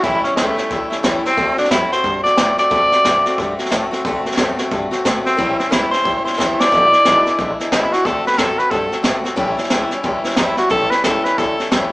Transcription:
0.03 A1 A2 E3 G3 C#4 E4, kick, snare
0.24 G3 C#4 E4, muted upright bass stroke, snare
0.36 C#2 A2 E3 G3 A3 C#4 E4, kick, snare, hi-hat pedal
0.57 G3 C#4 E4, muted upright bass stroke, snare
0.70 D2 E3 G3 C#4 E4, kick, snare
0.90 G3 C#4 E4, muted upright bass stroke, snare
1.03 E2 A2 E3 G3 C#4 E4, kick, snare, hi-hat pedal
1.23 G3 C4 C#4 E4, muted upright bass stroke, snare
1.37 D2 D3 A3 C4 F#4, kick, snare
1.57 A3 C4 D4 F#4, muted upright bass stroke, snare
1.65 snare
1.70 F#2 D3 A3 C4 E4 F#4, kick, snare, hi-hat pedal
1.91 A3 C4 F#4 C5, muted upright bass stroke, snare
2.03 G2 D3 A3 C4 F#4, kick, snare
2.24 A3 C4 F#4 D5, muted upright bass stroke, snare
2.36 A2 D3 A3 C4 F#4, kick, snare, hi-hat pedal
2.57 A3 C4 F#4 D5, muted upright bass stroke, snare
2.70 D2 D3 A3 C4 F#4, kick, snare
2.91 A3 C4 F#4, muted upright bass stroke, snare
3.04 F#2 D3 A3 C4 F#4, kick, snare, hi-hat pedal
3.25 A3 C4 F#4, muted upright bass stroke, snare
3.38 G2 D3 A3 C4 F#4, kick, snare
3.57 A3 C4 F#4, muted upright bass stroke, snare
3.65 snare
3.70 A2 D3 A3 C4 F#4, kick, snare, hi-hat pedal
3.91 A3 C4 F#4, muted upright bass stroke, snare
4.05 D2 D3 A3 C4 F#4, kick, snare
4.25 A3 C4 F#4, muted upright bass stroke, snare
4.32 snare
4.37 F#2 D3 A3 C4 F#4, kick, snare, hi-hat pedal
4.58 A3 C4 F#4, snare
4.71 G2 D3 A3 C4 F#4, kick, snare
4.91 A3 C4 F#4, muted upright bass stroke, snare
5.05 A2 D3 A3 C4 F#4, kick, snare, hi-hat pedal
5.24 A3 C4 F#4, muted upright bass stroke, snare
5.37 A1 A2 E3 G3 C#4 E4, kick, snare
5.58 G3 C4 C#4 E4, muted upright bass stroke, snare
5.70 C#2 A2 E3 G3 C#4 E4, kick, snare, hi-hat pedal
5.91 G3 C#4 E4 C5, muted upright bass stroke, snare
6.04 D2 E3 G3 C#4 E4, kick, snare
6.24 G3 C#4 E4 C5, muted upright bass stroke, snare
6.33 A2, snare
6.37 E2 E3 G3 C#4 E4, kick, snare, hi-hat pedal
6.58 G3 C#4 E4 D5, muted upright bass stroke, snare
6.72 E1 E2 B2 E3 G#3 D4 E4, kick, snare
6.92 E3 G#3 D4 E4, muted upright bass stroke, snare
7.05 G#1 E2 B2 E3 G#3 D4 E4, kick, snare, hi-hat pedal
7.26 E3 G#3 D4 E4, muted upright bass stroke, snare
7.39 A1 E3 G#3 D4 E4, kick, snare
7.59 E3 G#3 D4 E4, muted upright bass stroke, snare
7.72 C#2 E2 B2 E3 G#3 D4 E4, kick, snare, hi-hat pedal
7.91 G#3 D4 E4 F#4, muted upright bass stroke, snare
7.96 E3
8.05 D2 D3 A3 C4 F#4 A4, kick, snare
8.24 A3 C4 F#4 B4, muted upright bass stroke, snare
8.33 snare
8.37 F#2 D3 A3 C4 F#4 A4, kick, snare, hi-hat pedal
8.58 A3 C4 F#4 B4, muted upright bass stroke, snare
8.71 G2 D3 A3 C4 F#4 A4, kick, snare
8.91 A3 C4 F#4, muted upright bass stroke, snare
9.03 A2 D3 A3 C4 F#4, kick, snare, hi-hat pedal
9.24 A3 C4 F#4, muted upright bass stroke, snare
9.36 A1 A2 E3 G3 C#4 E4, kick, snare
9.57 G3 C#4 E4, muted upright bass stroke, snare
9.64 snare
9.70 C#2 A2 E3 G3 C#4 E4, kick, snare, hi-hat pedal
9.90 G3 C#4 E4, muted upright bass stroke, snare
10.03 D2 E3 G3 C#4 E4, kick, snare
10.24 G3 C#4 E4, muted upright bass stroke, snare
10.30 snare
10.36 E2 A2 E3 G3 C#4 E4, kick, snare, hi-hat pedal
10.57 G3 C#4 E4 F#4, muted upright bass stroke, snare
10.69 A1 A2 E3 G3 C#4 E4 A4, kick, snare
10.90 G3 C#4 E4 B4, muted upright bass stroke, snare
11.04 C#2 A2 E3 G3 C#4 E4 A4, kick, snare, hi-hat pedal
11.24 G3 C#4 E4 B4, muted upright bass stroke, snare
11.38 D2 E3 G3 C#4 E4 A4, kick, snare
11.58 G3 C#4 E4, muted upright bass stroke, snare
11.71 E2 A2 E3 G3 C#4 E4, kick, snare, hi-hat pedal

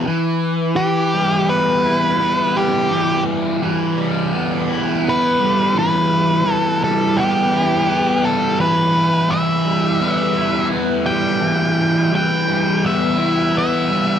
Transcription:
0.07 E3
0.76 E3 G4
1.14 G3
1.49 B3 B4
1.85 E4
2.20 B3
2.56 G3 G4
2.90 E3
3.63 E3
3.97 G3
4.32 B3
4.69 E4
5.04 B3
5.09 B4
5.39 G3
5.75 E3 B4
6.45 E3
6.53 A4
6.81 G3 A4
7.16 B3 G4
7.52 E4
7.88 B3
8.23 G3 A4
8.59 E3 B4
9.30 E3 E5
9.65 G3
10.00 B3
10.37 E4
10.71 B3
11.05 G3 G5
11.41 E3
12.14 E3 G5
12.48 G3
12.84 B3 E5
13.19 E4
13.54 B3
13.59 E5
13.89 G3

